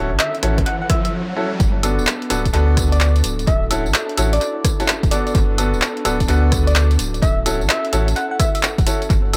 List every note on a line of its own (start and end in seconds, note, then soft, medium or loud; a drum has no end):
0.00 0.13 D1 loud
0.00 1.11 C#4 medium
0.00 1.11 E4 medium
0.00 1.10 F#4 medium
0.00 1.10 A4 medium
0.00 riser medium
0.11 0.18 A1 medium
0.19 0.36 E5 medium
0.19 clap loud
0.35 closed hi-hat soft
0.43 0.64 A1 medium
0.43 0.56 C#4 medium
0.43 0.56 E4 medium
0.43 0.56 F#4 medium
0.43 0.56 A4 medium
0.43 cross-stick medium
0.43 open hi-hat loud
0.58 kick medium
0.58 cross-stick medium
0.58 closed hi-hat medium
0.66 0.76 F#5 medium
0.66 closed hi-hat medium
0.82 0.87 F#5 medium
0.90 0.99 E5 medium
0.90 kick loud
0.90 cross-stick medium
0.90 open hi-hat loud
1.05 1.10 E5 medium
1.05 closed hi-hat medium
1.36 1.49 C#4 medium
1.36 1.49 E4 medium
1.36 1.49 F#4 medium
1.36 1.49 A4 medium
1.60 2.00 G1 loud
1.60 3.22 B3 medium
1.60 3.22 D4 medium
1.60 5.31 F#4 medium
1.60 6.95 A4 medium
1.60 kick loud
1.60 closed hi-hat medium
1.60 tambourine soft
1.83 2.01 B3 medium
1.83 2.01 D4 medium
1.83 2.01 F#4 medium
1.83 2.01 A4 medium
1.83 open hi-hat loud
1.83 tambourine medium
1.83 high woodblock medium
1.99 2.06 D1 medium
1.99 tambourine soft
2.07 clap loud
2.07 tambourine soft
2.22 closed hi-hat soft
2.30 2.51 D1 medium
2.30 2.43 B3 medium
2.30 2.43 D4 medium
2.30 2.43 F#4 medium
2.30 2.43 A4 medium
2.30 cross-stick medium
2.30 open hi-hat loud
2.30 tambourine medium
2.30 high woodblock medium
2.45 kick medium
2.45 closed hi-hat medium
2.45 tambourine soft
2.54 3.22 D2 loud
2.54 3.23 B3 medium
2.54 3.23 D4 medium
2.54 3.23 F#4 medium
2.54 3.23 A4 loud
2.54 closed hi-hat medium
2.54 tambourine soft
2.77 kick loud
2.77 cross-stick medium
2.77 open hi-hat loud
2.77 tambourine medium
2.92 2.98 D5 medium
2.92 closed hi-hat medium
2.92 tambourine soft
3.00 3.10 D5 medium
3.00 clap loud
3.00 tambourine soft
3.16 closed hi-hat medium
3.16 tambourine soft
3.24 3.45 D1 loud
3.24 5.33 D4 medium
3.24 5.33 E4 medium
3.24 open hi-hat loud
3.24 tambourine medium
3.39 closed hi-hat soft
3.39 tambourine soft
3.47 3.88 D1 loud
3.47 3.64 E5 medium
3.47 kick loud
3.47 closed hi-hat medium
3.47 tambourine soft
3.71 3.84 C#4 medium
3.71 3.84 E4 medium
3.71 3.84 F#4 medium
3.71 3.84 A4 loud
3.71 open hi-hat loud
3.71 tambourine medium
3.71 high woodblock medium
3.86 3.93 A1 medium
3.86 tambourine soft
3.94 clap loud
3.94 tambourine soft
4.09 closed hi-hat soft
4.17 4.39 A1 medium
4.17 4.30 C#4 medium
4.17 4.30 E4 medium
4.17 4.30 F#4 medium
4.17 4.30 A4 medium
4.17 open hi-hat loud
4.17 tambourine medium
4.17 high woodblock medium
4.33 4.65 D5 medium
4.33 closed hi-hat medium
4.33 tambourine soft
4.41 closed hi-hat medium
4.41 tambourine soft
4.65 kick loud
4.65 cross-stick medium
4.65 open hi-hat loud
4.65 tambourine medium
4.80 4.87 C#4 medium
4.80 4.87 E4 medium
4.80 4.87 F#4 medium
4.80 4.87 A4 loud
4.80 closed hi-hat medium
4.80 tambourine soft
4.88 clap loud
4.88 tambourine soft
5.03 5.10 D1 loud
5.03 kick loud
5.03 closed hi-hat medium
5.03 tambourine soft
5.11 5.56 B3 medium
5.11 5.56 D4 medium
5.11 5.56 F#4 medium
5.11 5.56 A4 medium
5.11 5.21 D5 medium
5.11 open hi-hat loud
5.11 tambourine medium
5.27 5.32 D5 medium
5.27 closed hi-hat soft
5.27 tambourine soft
5.35 5.75 G1 loud
5.35 6.97 B3 medium
5.35 6.97 D4 medium
5.35 9.37 F#4 medium
5.35 kick loud
5.35 closed hi-hat medium
5.35 tambourine soft
5.58 5.76 B3 medium
5.58 5.76 D4 medium
5.58 5.76 F#4 medium
5.58 5.76 A4 medium
5.58 open hi-hat loud
5.58 tambourine medium
5.58 high woodblock medium
5.74 5.81 D1 medium
5.74 tambourine soft
5.82 clap loud
5.82 tambourine soft
5.97 closed hi-hat soft
6.05 6.26 D1 medium
6.05 6.18 B3 medium
6.05 6.18 D4 medium
6.05 6.18 F#4 medium
6.05 6.18 A4 loud
6.05 cross-stick medium
6.05 open hi-hat loud
6.05 tambourine medium
6.05 high woodblock medium
6.20 kick medium
6.20 closed hi-hat medium
6.20 tambourine soft
6.28 6.97 D2 loud
6.28 6.98 B3 loud
6.28 6.98 D4 medium
6.28 6.98 F#4 medium
6.28 6.98 A4 loud
6.28 closed hi-hat medium
6.28 tambourine soft
6.52 kick loud
6.52 cross-stick medium
6.52 open hi-hat loud
6.52 tambourine medium
6.67 6.73 D5 medium
6.67 closed hi-hat medium
6.67 tambourine soft
6.75 6.85 D5 medium
6.75 clap loud
6.75 tambourine soft
6.91 closed hi-hat medium
6.91 tambourine soft
6.99 7.20 D1 loud
6.99 9.08 C#4 medium
6.99 9.08 E4 medium
6.99 9.08 A4 medium
6.99 open hi-hat loud
6.99 tambourine medium
7.14 closed hi-hat soft
7.14 tambourine soft
7.22 7.63 D1 loud
7.22 7.39 E5 medium
7.22 kick loud
7.22 closed hi-hat medium
7.22 tambourine soft
7.46 7.59 C#4 medium
7.46 7.59 E4 medium
7.46 7.59 F#4 medium
7.46 7.59 A4 loud
7.46 open hi-hat loud
7.46 tambourine medium
7.46 high woodblock medium
7.61 7.68 A1 medium
7.61 tambourine soft
7.69 7.86 E5 medium
7.69 clap loud
7.69 tambourine soft
7.85 closed hi-hat soft
7.93 8.14 A1 medium
7.93 8.06 C#4 medium
7.93 8.06 E4 medium
7.93 8.06 F#4 medium
7.93 8.06 A4 loud
7.93 open hi-hat loud
7.93 tambourine medium
7.93 high woodblock medium
8.08 closed hi-hat medium
8.08 tambourine soft
8.16 8.26 F#5 medium
8.16 closed hi-hat medium
8.16 tambourine soft
8.31 8.37 F#5 medium
8.39 8.49 E5 medium
8.39 kick loud
8.39 cross-stick medium
8.39 open hi-hat loud
8.39 tambourine medium
8.55 8.60 E5 medium
8.55 closed hi-hat medium
8.55 tambourine soft
8.63 clap loud
8.63 tambourine soft
8.78 8.85 D1 loud
8.78 kick loud
8.78 closed hi-hat medium
8.78 tambourine soft
8.87 8.99 C#4 medium
8.87 8.99 E4 medium
8.87 8.99 F#4 medium
8.87 8.99 A4 medium
8.87 open hi-hat loud
8.87 tambourine medium
9.02 closed hi-hat soft
9.02 tambourine soft
9.10 9.37 G1 loud
9.10 9.37 B3 medium
9.10 9.37 D4 medium
9.10 9.37 A4 medium
9.10 kick loud
9.10 closed hi-hat medium
9.10 tambourine soft
9.33 9.37 B3 medium
9.33 9.37 D4 medium
9.33 9.37 F#4 medium
9.33 9.37 A4 medium
9.33 open hi-hat loud
9.33 tambourine medium
9.33 high woodblock medium